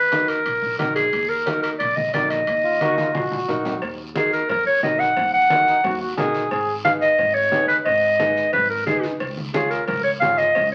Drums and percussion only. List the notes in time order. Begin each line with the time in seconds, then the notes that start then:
0.12 high conga, high timbale, short guiro
0.28 high timbale, short guiro
0.46 high conga, high timbale, long guiro
0.79 high conga, high timbale, low timbale, short guiro
0.96 high timbale, short guiro
1.13 high conga, high timbale, long guiro
1.47 high conga, high timbale, short guiro
1.63 high timbale, short guiro
1.80 high conga, high timbale, long guiro
1.97 high conga
2.14 high conga, high timbale, low timbale, short guiro
2.30 high timbale, short guiro
2.47 high conga, high timbale, long guiro
2.81 high conga, high timbale, short guiro
2.98 high conga, high timbale, short guiro
3.15 high conga, high timbale, long guiro
3.32 high timbale
3.48 low conga, short guiro
3.65 low conga, low timbale, short guiro
3.82 cowbell, high conga, long guiro
4.16 cowbell, high conga, short guiro
4.33 short guiro
4.49 cowbell, high conga, low conga, long guiro
4.83 cowbell, high conga, low timbale, short guiro
5.00 short guiro
5.17 cowbell, high conga, low conga, long guiro
5.50 cowbell, high conga, short guiro
5.67 short guiro
5.84 cowbell, high conga, low conga, long guiro
6.18 cowbell, high conga, low timbale, short guiro
6.34 short guiro
6.51 cowbell, high conga, long guiro
6.85 cowbell, high conga, short guiro
7.02 short guiro
7.18 cowbell, high conga, low conga, long guiro
7.52 cowbell, high conga, low timbale, short guiro
7.69 short guiro
7.86 cowbell, high conga, long guiro
8.19 cowbell, high conga, short guiro
8.37 short guiro
8.53 cowbell, high conga, low conga, long guiro
8.87 cowbell, high conga, short guiro
9.03 short guiro
9.20 cowbell, high conga, long guiro
9.37 high conga
9.54 cowbell, high conga, short guiro
9.71 short guiro
9.88 cowbell, high conga, low conga, long guiro
10.21 cowbell, high conga, low timbale, short guiro
10.38 short guiro
10.55 cowbell, high conga, low conga, long guiro